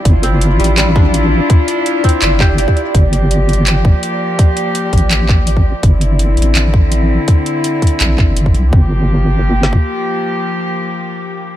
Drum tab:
HH |x---x---x---xx--x-------x-------|x---x---x---xx--x-------x---x---|x---x---x---xx--x-------x-------|x---x---x---xx--x-------x-------|
CP |----------------x---------------|----------------x---x-----------|----------------x---------------|----------------x---x-----------|
SD |--------------------------------|--------------------------------|--------------------------------|--------------------------------|
BD |o-------------------o-----------|o-----------o-------o-----o-----|o-------------------o-----------|o-----------o-------o-----o-----|

HH |x---x---x---xx--x-------x-------|x---x---x---xx--x-------x---x---|--------------------------------|--------------------------------|
CP |----------------x---------------|----------------x---x-----------|--------------------------------|--------------------------------|
SD |--------------------------------|--------------------------------|--------------------o-----------|--------------------------------|
BD |o-------------------o-----------|o-----------o-------o-----o-----|o---------------------o---------|--------------------------------|